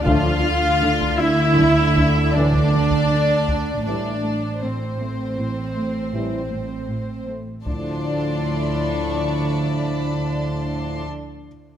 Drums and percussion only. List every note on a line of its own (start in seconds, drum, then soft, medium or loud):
0.06 taiko medium
1.01 taiko medium
1.58 taiko medium
1.95 taiko medium
2.53 taiko medium
2.91 taiko medium
3.48 taiko medium
7.66 taiko soft